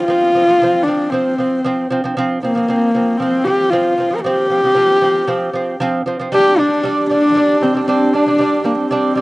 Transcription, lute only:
0.08 0.29 F3 medium
0.08 0.30 C4 loud
0.35 0.45 F3 medium
0.35 0.46 C4 medium
0.47 0.58 F3 medium
0.47 0.59 C4 medium
0.62 0.82 F3 medium
0.62 0.83 C4 loud
0.87 1.08 F3 medium
0.87 1.08 C4 medium
1.12 1.33 F3 medium
1.12 1.34 C4 medium
1.38 1.59 F3 medium
1.38 1.60 C4 medium
1.64 1.85 F3 medium
1.64 1.86 C4 loud
1.90 2.01 F3 medium
1.90 2.02 C4 medium
2.04 2.14 F3 medium
2.04 2.15 C4 medium
2.17 2.37 F3 loud
2.17 2.38 C4 loud
2.43 2.53 F3 medium
2.43 2.54 C4 medium
2.55 2.66 F3 medium
2.55 2.67 C4 medium
2.68 2.89 F3 medium
2.68 2.90 C4 medium
2.95 3.15 F3 medium
2.95 3.16 C4 medium
3.20 3.41 F3 medium
3.20 3.42 C4 medium
3.46 3.67 F3 medium
3.46 3.68 C4 medium
3.72 3.93 F3 medium
3.72 3.94 C4 loud
3.98 4.08 F3 medium
3.98 4.10 C4 medium
4.11 4.21 F3 medium
4.11 4.22 C4 medium
4.24 4.45 F3 medium
4.24 4.46 C4 loud
4.50 4.60 F3 medium
4.50 4.61 C4 medium
4.63 4.73 F3 medium
4.63 4.75 C4 medium
4.75 4.96 F3 medium
4.75 4.97 C4 loud
5.01 5.23 F3 medium
5.01 5.24 C4 loud
5.27 5.49 F3 loud
5.27 5.49 C4 loud
5.53 5.75 F3 medium
5.53 5.76 C4 loud
5.80 6.01 F3 loud
5.80 6.02 C4 loud
6.06 6.16 F3 medium
6.06 6.17 C4 medium
6.19 6.30 F3 medium
6.19 6.30 C4 medium
6.32 6.53 G3 loud
6.32 6.54 D4 medium
6.58 6.79 G3 medium
6.58 6.80 D4 medium
6.83 7.04 G3 loud
6.83 7.05 D4 loud
7.10 7.31 G3 medium
7.10 7.31 D4 medium
7.35 7.56 G3 medium
7.35 7.57 D4 loud
7.61 7.71 G3 medium
7.61 7.73 D4 medium
7.74 7.85 G3 medium
7.74 7.86 D4 medium
7.88 8.08 G3 medium
7.88 8.09 D4 loud
8.14 8.24 G3 medium
8.14 8.24 D4 medium
8.26 8.36 G3 medium
8.26 8.37 D4 medium
8.39 8.59 G3 loud
8.39 8.60 D4 loud
8.64 8.85 G3 medium
8.64 8.86 D4 medium
8.91 9.11 G3 loud
8.91 9.12 D4 loud
9.15 9.21 G3 medium
9.15 9.21 D4 medium

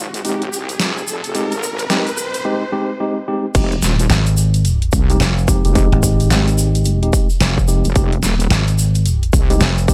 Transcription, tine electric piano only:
0.25 0.42 G#3 medium
0.25 0.42 C4 medium
0.25 0.42 D#4 medium
0.25 0.42 G4 loud
1.35 1.52 G#3 medium
1.35 1.52 C4 medium
1.35 1.52 D#4 medium
1.35 1.52 G4 loud
1.90 2.07 G#3 loud
1.90 2.07 C4 medium
1.90 2.07 D#4 medium
1.90 2.07 G4 loud
2.45 2.62 G#3 loud
2.45 2.62 C4 medium
2.45 2.62 D#4 medium
2.45 2.62 G4 loud
2.72 2.90 G#3 loud
2.72 2.90 C4 medium
2.72 2.90 D#4 medium
2.72 2.90 G4 loud
3.00 3.17 G#3 loud
3.00 3.17 C4 medium
3.00 3.17 D#4 medium
3.00 3.17 G4 loud
3.28 3.45 G#3 loud
3.28 3.45 C4 medium
3.28 3.45 D#4 medium
3.28 3.45 G4 loud
3.55 3.73 G#3 medium
3.55 3.73 C4 medium
3.55 3.72 D#4 medium
3.55 3.73 G4 loud
5.10 5.21 G#3 loud
5.10 5.21 C4 medium
5.10 5.21 D#4 medium
5.10 5.21 G4 loud
5.48 5.62 G#3 medium
5.48 5.62 C4 medium
5.48 5.62 D#4 medium
5.48 5.62 G4 loud
5.65 5.74 G#3 medium
5.65 5.74 C4 medium
5.65 5.74 D#4 medium
5.65 5.74 G4 medium
5.76 6.99 G#3 medium
5.76 6.99 C4 medium
5.76 6.99 D#4 medium
5.76 6.99 G4 medium
7.03 7.26 G#3 medium
7.03 7.26 C4 medium
7.03 7.26 D#4 medium
7.03 7.26 G4 medium
7.68 7.85 G#3 medium
7.68 7.85 C4 medium
7.68 7.85 D#4 medium
7.68 7.85 G4 medium
7.96 8.13 G#3 loud
7.96 8.13 C4 medium
7.96 8.13 D#4 medium
7.96 8.13 G4 loud
9.50 9.61 G#3 loud
9.50 9.61 C4 medium
9.50 9.61 D#4 medium
9.50 9.61 G4 loud
9.88 9.94 G#3 loud
9.88 9.94 C4 medium
9.88 9.94 D#4 medium
9.88 9.94 G4 loud

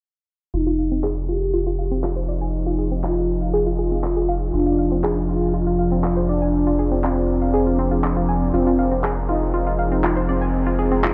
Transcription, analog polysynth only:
0.54 1.19 D#4 loud
1.29 2.19 G4 medium
2.29 2.94 D#4 medium
3.04 4.44 F4 loud
4.54 5.19 D4 loud
5.29 6.19 F4 loud
6.29 6.94 D4 medium
7.04 8.44 C4 loud
8.54 9.19 C4 loud
9.29 10.19 D#4 loud
10.29 10.94 C4 loud
11.04 11.14 D#4 loud

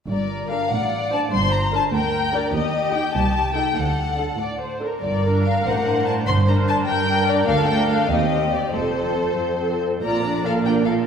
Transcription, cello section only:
0.09 0.58 G2 medium
0.71 1.20 A2 soft
1.32 1.81 G2 medium
1.93 2.42 D2 medium
2.54 3.03 D#2 medium
3.14 3.63 C2 medium
3.76 4.26 D2 medium
4.38 4.89 A2 soft
5.02 5.58 G2 medium
5.65 6.19 A2 soft
6.27 6.80 G2 medium
6.87 7.41 G2 medium
7.47 8.02 D2 medium
8.09 8.66 D#2 medium
8.73 9.31 F2 soft
9.38 9.96 F2 soft
10.03 11.07 A#2 soft

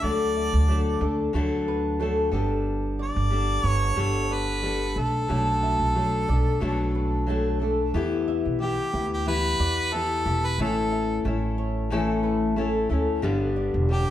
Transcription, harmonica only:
0.04 1.02 D5 medium
3.03 3.65 D5 loud
3.65 4.01 C#5 loud
4.01 4.35 C#5 medium
4.33 5.00 B4 medium
4.99 7.29 A4 medium
8.61 9.08 G4 medium
9.14 9.26 G4 medium
9.28 9.95 B4 loud
9.93 10.47 A4 loud
10.45 10.59 B4 medium
10.61 11.22 A4 medium
13.92 14.10 G4 medium

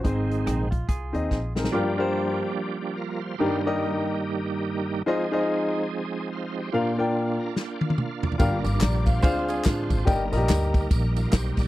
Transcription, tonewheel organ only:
0.03 0.68 D#3 soft
0.03 0.68 G#3 soft
0.03 0.68 C4 medium
1.71 3.36 F3 medium
1.71 3.36 G3 medium
1.71 3.36 A#3 medium
1.71 2.79 D4 medium
1.71 2.79 G4 medium
2.81 2.97 D4 medium
2.81 2.97 G4 medium
2.97 3.22 F4 medium
2.97 3.21 A#4 medium
3.21 3.62 C5 medium
3.21 3.62 F5 medium
3.38 5.03 G2 medium
3.38 5.03 D#3 medium
3.38 5.02 G3 medium
3.38 5.02 A#3 medium
3.38 5.02 D#4 medium
3.38 5.02 G4 medium
5.06 6.70 F3 medium
5.06 6.70 G#3 medium
5.06 6.70 C4 medium
5.06 6.70 D#4 medium
5.06 6.29 G#4 medium
6.33 6.56 C5 medium
6.33 6.56 F5 medium
6.58 6.97 G4 medium
6.58 6.97 C5 medium
6.72 8.36 A#3 medium
6.72 6.79 C#4 medium
6.72 8.36 F4 medium
6.77 8.39 D4 medium
7.39 7.55 A#5 medium
7.57 7.80 G5 medium
7.81 7.97 F5 medium
7.99 8.22 F5 medium
8.25 8.39 D5 medium
8.41 9.23 G3 medium
8.41 9.22 A#3 medium
8.41 9.22 D4 medium
8.41 9.23 F4 medium
8.41 8.81 A#4 medium
8.84 9.07 G4 medium
8.84 9.07 D5 medium
9.07 9.22 C5 medium
9.07 9.47 F5 medium
9.22 10.05 G#3 medium
9.22 10.05 C4 medium
9.22 10.05 D4 medium
9.22 9.29 D#4 medium
9.22 10.05 C5 medium
9.28 10.08 F4 medium
10.07 10.13 F3 medium
10.07 11.68 A#3 medium
10.07 11.68 D#4 medium
10.07 11.14 A#4 medium
10.12 11.68 G3 medium
11.17 11.33 F4 medium
11.17 11.32 A#4 medium
11.35 11.58 G4 medium
11.35 11.58 C5 medium
11.59 11.68 G4 medium
11.59 11.68 D5 medium

